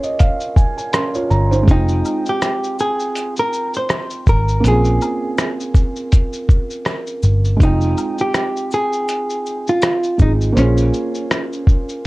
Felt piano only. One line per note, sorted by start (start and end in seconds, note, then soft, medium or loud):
0.00 1.25 A#3 medium
0.00 0.89 C#4 medium
0.00 0.91 F4 medium
0.00 0.92 G#4 medium
0.00 0.89 C5 medium
0.00 1.15 C#5 medium
0.00 0.18 D#5 medium
0.20 0.54 F5 medium
0.56 0.76 G#5 medium
0.77 0.92 G#5 medium
0.93 1.14 C#4 medium
0.93 1.14 A#4 medium
0.93 1.28 C6 medium
1.15 1.50 F4 medium
1.15 1.50 C#5 medium
1.30 1.65 A#5 medium
1.51 1.66 D#4 medium
1.51 1.87 C5 medium
1.63 4.57 G#3 medium
1.63 4.59 C4 medium
1.67 4.60 D#4 medium
1.67 4.61 F4 medium
1.67 4.62 G5 medium
4.60 7.54 A#3 medium
4.60 7.55 C4 medium
4.64 7.56 C#4 medium
4.64 7.57 F4 medium
4.68 7.58 G#4 medium
7.57 10.14 G#3 medium
7.57 10.15 C4 medium
7.61 10.16 D#4 medium
7.61 10.17 F4 medium
7.65 10.18 G5 medium
10.18 10.56 G#3 soft
10.18 10.56 C4 soft
10.18 10.57 D#4 soft
10.18 10.57 F4 soft
10.22 10.58 G#4 soft
10.53 12.07 A#3 medium
10.53 12.07 C5 medium
10.57 12.07 C#4 medium
10.57 12.07 F4 medium
10.57 12.07 G#4 medium